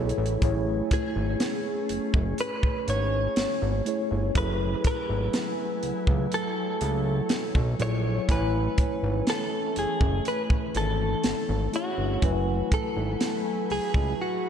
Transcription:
Already playing: B1 F#3 A3 E4 G#4 A4 B4 C#5 G#5
0.09 closed hi-hat
0.18 A1
0.26 closed hi-hat
0.41 A1 A3 C#4 E4 G#4 C#5, kick, closed hi-hat
0.91 G#4, kick, closed hi-hat
1.16 G#1
1.40 snare, closed hi-hat
1.89 F#1, closed hi-hat
2.14 F#1, kick
2.38 B4, closed hi-hat
2.63 kick
2.88 G#1 C#5, closed hi-hat
3.36 G#1, snare, closed hi-hat
3.62 G#1
3.85 A3 E4 G#4 C#5, closed hi-hat
4.11 G1
4.35 F#1 F#3 A3 E4 G#4 A4 B4 G#5, kick, closed hi-hat
4.84 B4, kick, closed hi-hat
5.10 G#1
5.33 snare, closed hi-hat
5.83 C#2, closed hi-hat
6.07 C#2, kick
6.32 A4 C#5, closed hi-hat
6.81 C#2, closed hi-hat
7.29 snare, closed hi-hat
7.55 B1, kick
7.79 A#1 F#3 E4 G#4 A4 C#5, closed hi-hat
8.28 A1 E3 A3 C#4 E4 B4 C#5 G#5, kick, closed hi-hat
8.78 kick, closed hi-hat
9.03 G#1
9.27 A4, snare, closed hi-hat
9.76 F#1 G#4, closed hi-hat
10.01 F#1, kick
10.25 B4, closed hi-hat
10.50 kick
10.75 G#1 A4, closed hi-hat
11.23 G#1, snare, closed hi-hat
11.49 G#1
11.72 A3 E4 F#4 G#4 C#5, closed hi-hat
11.98 G1
12.21 F#1 F#3 A3 E4 B4 G#5, kick, closed hi-hat
12.72 A4, kick, closed hi-hat
12.97 G#1
13.21 snare, closed hi-hat
13.70 C#2 G#4, open hi-hat
13.94 C#2, kick
14.22 F#4

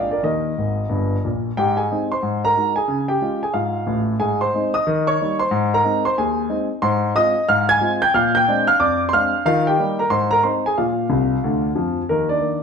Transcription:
Already playing: A#1 A#2
0.11 A#4 D5
0.23 D#2 D#3 A#4 D#5
0.58 G#1 G#2
0.89 G1 G2
1.25 A#1 A#2
1.57 G#2 G4 G5
1.77 G#4 G#5
1.91 G#3 C4 D#4
2.12 C5 C6
2.23 G#2
2.45 A#4 A#5
2.57 G#3 D#4 F#4
2.76 G#4 G#5
2.88 C#3
3.08 G4 G5
3.21 G#3 C#4 F4
3.43 G#4 G#5
3.54 G#2 F4 F5
3.87 A1 A2
4.20 G#2 G#4 G#5
4.41 C5 C6
4.54 G#3 C4 D#4
4.74 D#5 D#6
4.87 D#3
5.07 C#5 C#6
5.21 G3 A#3 D#4
5.39 C5 C6
5.51 G#2
5.74 A#4 A#5
5.84 G#3 C4 D#4
6.05 C5 C6
6.18 D#2 G#4 G#5
6.49 G#3 C4 D#4
6.82 G#2 C5 C6
7.15 G#3 C4 F4 D#5 D#6
7.49 G#2 F5 F6
7.69 G#5 G#6
7.81 G#3 C4 F4
8.02 G5 G6
8.14 A#2 F5 F6
8.35 G5 G6
8.48 G#3 C4 D4
8.67 F5 F6
8.79 F2 D5 D6
9.09 G#3 C6
9.13 C4 D4 F5 F6
9.45 D#3 F4 F5
9.67 G4 G5
9.79 G3 A#3 D#4
9.99 A#4 A#5
10.10 G#2 C5 C6
10.31 A#4 A#5
10.43 G#3 C4 D#4 C5 C6
10.66 G#4 G#5
10.78 A#2 F4 F5
11.09 C2 C3
11.44 D2 D3
11.75 F2 F3
12.09 D#2 D#3 A#3 A#4
12.29 D4 D5
12.41 D#3 A#3

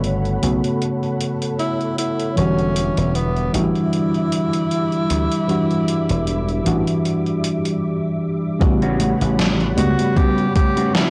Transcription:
Already playing: G1 C#3 A3 B3 F#4 A4 C#5 F#5 B5
0.04 closed hi-hat
0.25 closed hi-hat
0.41 B1 C#3 A3 B3 F#4, closed hi-hat
0.64 closed hi-hat
0.82 closed hi-hat
1.03 closed hi-hat
1.21 closed hi-hat
1.42 closed hi-hat
1.59 E4, closed hi-hat
1.81 closed hi-hat
1.98 E4, closed hi-hat
2.20 closed hi-hat
2.36 E1 D3 E3 G3 C#4 F#4 E5 D6, closed hi-hat
2.59 closed hi-hat
2.76 closed hi-hat
2.98 E1, closed hi-hat
3.15 B3, closed hi-hat
3.37 closed hi-hat
3.53 A1 E3 G3 D4 E4 F#4, closed hi-hat
3.76 closed hi-hat
3.93 closed hi-hat
4.15 closed hi-hat
4.32 closed hi-hat
4.53 closed hi-hat
4.71 closed hi-hat
4.92 closed hi-hat
5.10 D2, closed hi-hat
5.32 closed hi-hat
5.47 E3 G3 D4 F#4, closed hi-hat
5.70 closed hi-hat
5.88 closed hi-hat
6.09 E1, closed hi-hat
6.27 closed hi-hat
6.48 closed hi-hat
6.64 A1 E3 G3 D4 F#4, closed hi-hat
6.87 closed hi-hat
7.05 closed hi-hat
7.26 closed hi-hat
7.44 closed hi-hat
7.65 closed hi-hat
8.59 A1 C#3 G3 B3 F#4 C#5 F#5 B5, muted clean electric guitar stroke, kick, closed hi-hat, high conga
8.82 G3 B3 C#4 F#4, closed hi-hat
9.00 closed hi-hat, high conga
9.21 A1, closed hi-hat, high conga
9.39 snare, closed hi-hat, high conga
9.60 closed hi-hat
9.76 C#2 C#3 G3 B3 F#4 F#5, closed hi-hat, high conga
9.99 muted clean electric guitar stroke, closed hi-hat, high conga
10.17 G3 B3 C#4 F#4 G4, kick, closed hi-hat, high conga
10.38 closed hi-hat
10.56 G4, kick, closed hi-hat, high conga
10.77 G3 B3 C#4 F#4, closed hi-hat, high conga
10.95 E4, snare, closed hi-hat, high conga

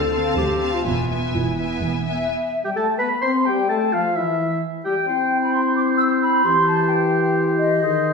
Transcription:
Already playing: D2 D3 C4 A4 F5 A5
0.13 C4 F5 A5
0.37 D2 D3 G4
0.60 C4 F5 A5
0.74 F4
0.85 E1 E2 B3 F4 E5 G#5
1.09 B3 E5 G#5
1.34 E1 E2 E4
1.57 B3 E5 G#5
1.81 E1 E2
2.06 B3 E5 G#5
2.65 G3 G4 G5
2.76 A3 A4 A5
2.99 B3 B4 B5
3.21 C4 C5 C6
3.45 G3 G4 G5
3.69 A3 A4 A5
3.92 F3 F4 F5
4.15 E3 E4 E5
4.84 G3 G4 G5
5.07 C4 E4 C5
5.42 B5
5.52 C6
5.75 D6
5.98 E6
6.22 B5
6.44 E3 G4 C6
6.68 A5
6.90 G5
7.59 D#5
7.82 D#3 G#4 C5

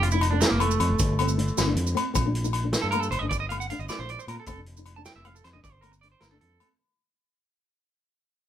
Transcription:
Already playing: F1
0.03 F4, closed hi-hat
0.11 D#4 E4, maracas
0.21 D#4, closed hi-hat, low agogo
0.31 D4
0.41 D#4, snare, closed hi-hat, maracas
0.49 F1 A#3
0.60 A3 C4, closed hi-hat, low agogo
0.71 maracas
0.80 F2, closed hi-hat, low agogo
0.90 F1
0.99 G1, kick, closed hi-hat, maracas
1.19 C4, closed hi-hat, low agogo
1.28 maracas
1.38 muted nylon-string guitar stroke, closed hi-hat
1.48 maracas
1.57 G1 C4, snare, closed hi-hat, low agogo, maracas
1.67 D4
1.75 F2, closed hi-hat, maracas
1.87 maracas
1.95 C4, closed hi-hat, low agogo
2.14 A#1 C4, kick, closed hi-hat, low agogo, maracas
2.26 D4
2.35 closed hi-hat
2.44 D#4, maracas
2.53 closed hi-hat, low agogo
2.64 D4
2.73 snare, closed hi-hat, maracas
2.82 G2 A4
2.91 A#3 A#4, closed hi-hat, low agogo
3.01 A4, maracas
3.11 G1 C5, closed hi-hat, low agogo
3.19 G1 D#5
3.23 D4
3.29 D5, kick, closed hi-hat, maracas
3.40 D#5
3.49 C4 F5, closed hi-hat, low agogo
3.60 F#5, maracas
3.70 D4 F5, closed hi-hat
3.79 G1 D#5, maracas
3.89 C4 D5, snare, closed hi-hat, low agogo, maracas
3.99 A#1 D4 C5
4.09 D5, closed hi-hat, maracas
4.19 C5, maracas
4.27 A#2 C4 A#4, closed hi-hat, low agogo
4.40 A4
4.46 F1 C4 A4, kick, closed hi-hat, low agogo, maracas
4.58 D4
4.66 closed hi-hat
4.77 D#4, maracas
4.86 closed hi-hat, low agogo
4.96 D4 A5
5.05 G5, snare, closed hi-hat, maracas
5.16 F1 E5
5.25 C4 F5, closed hi-hat, low agogo
5.35 A4, maracas
5.44 F2 C5, snare, closed hi-hat, low agogo
5.53 F1 D4 D#5
5.64 G1 D5, kick, closed hi-hat, maracas
5.72 C5
5.81 C4 A#4, closed hi-hat, low agogo, maracas
5.92 muted clean electric guitar stroke, maracas
6.01 D4 D5, closed hi-hat
6.12 C5
6.20 G1 C4 A#4, snare, closed hi-hat, low agogo, maracas
6.31 D4 A4
6.41 F2 A4, closed hi-hat
6.60 C4, closed hi-hat, low agogo

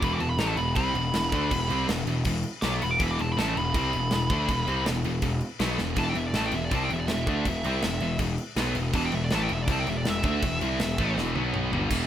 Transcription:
0.02 E1 E2 B2 E3 B5, kick, crash
0.13 D6
0.20 E1 E2 B2 A5, crash
0.29 B5
0.38 A1 A2 E3 A3 A#5, snare, crash
0.47 A5
0.56 E1 E2 B2 B5, crash
0.75 C2 C3 G3 C4 B5, kick, crash
0.94 E1 E2 B2, crash
1.13 E1 E2 B2, snare, crash
1.32 D2 D3 A3 D4, kick, crash
1.51 E1 E2 B2, kick, crash
1.70 C2 C3 G3 C4, crash
1.88 E1 E2 B2, snare, crash
2.05 E1 E2 B2, crash
2.25 E1 E2 B2, kick, crash
2.43 crash
2.62 B1 B2 F#3 B3 D6, snare, crash
2.81 E1 E2 B2 B5, crash
2.91 D6
2.99 E1 E2 B2 E3 B5, kick, crash
3.11 D6
3.18 E1 E2 B2 A5, crash
3.32 B5
3.37 A1 A2 E3 A3 A5, snare, crash
3.49 A5
3.56 E1 E2 B2 B5, crash
3.74 C2 C3 G3 C4 B5, kick, crash
3.92 E1 E2 B2, crash
4.11 E1 E2 B2, snare, crash
4.30 D2 D3 A3 D4, kick, crash
4.49 E1 E2 B2, kick, crash
4.67 C2 C3 G3 C4, crash
4.86 E1 E2 B2, snare, crash
5.04 E1 E2 B2, crash
5.22 E1 E2 B2, kick, crash
5.41 crash
5.60 B1 B2 F#3 B3, snare, crash
5.78 E1 E2 B2, snare
5.96 E1 E2 B2 E3 A5, kick, crash
6.09 G5
6.15 E1 E2 B2 E5, crash
6.27 D5
6.33 A1 A2 E3 A3 A5, snare, crash
6.46 G5
6.52 E1 E2 B2 E5, crash
6.65 D5
6.71 C2 C3 G3 C4 A5, kick, crash
6.85 G5
6.89 E1 E2 B2 E5, crash
7.00 D5
7.08 E1 E2 B2 E5, snare, crash
7.27 D2 D3 A3 D4, kick, crash
7.45 E1 E2 B2, kick, crash
7.64 C2 C3 G3 C4, crash
7.82 E1 E2 B2, snare, crash
8.00 E1 E2 B2, crash
8.19 E1 E2 B2, kick, crash
8.38 crash
8.56 B1 B2 F#3 B3, snare, crash
8.75 E1 E2 B2, crash
8.93 E1 E2 B2 E3 A5, kick, crash
9.05 G5
9.11 E1 E2 B2 E5, crash
9.25 D5
9.30 A1 A2 E3 A3, snare, crash
9.35 A5
9.42 G5
9.49 E1 E2 B2, crash
9.53 E5
9.62 D5
9.68 C2 C3 G3 C4, kick, crash
9.72 A5
9.79 G5
9.86 E1 E2 B2 E5, crash
9.97 D5
10.05 E1 E2 B2 E5, snare, crash
10.23 D2 D3 A3 D4, kick, crash
10.43 E1 E2 B2, kick, crash
10.61 C2 C3 G3 C4, crash
10.79 E1 E2 B2, snare, crash
10.98 A1 A2 E3 A3, kick, crash
11.16 E1 E2 B2 E3, snare
11.35 B1 B2 F#3 B3, high tom
11.54 mid tom
11.71 G1 G2 D3 G3, floor tom
11.90 E1 E2 B2 E3, kick, crash

